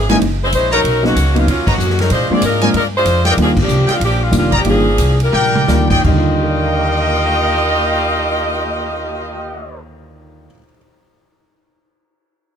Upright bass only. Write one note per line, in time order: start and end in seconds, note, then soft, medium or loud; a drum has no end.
0.00 0.21 G#1 medium
0.21 0.52 F#1 medium
0.53 0.84 A#1 medium
0.84 1.15 B1 medium
1.16 1.46 C#2 medium
1.47 1.78 D#2 medium
1.78 2.09 F#2 loud
2.11 2.29 A#2 medium
2.30 muted upright bass stroke soft
2.42 2.72 G#2 medium
2.74 3.04 G2 medium
3.05 3.36 F2 medium
3.37 3.67 D#2 medium
3.68 3.86 C2 medium
3.89 muted upright bass stroke soft
4.00 4.31 A#1 medium
4.32 4.63 F1 medium
4.64 4.97 G1 medium
4.98 5.31 C2 medium
5.33 5.67 A#1 medium
5.68 6.03 D2 medium
6.04 10.46 D#2 loud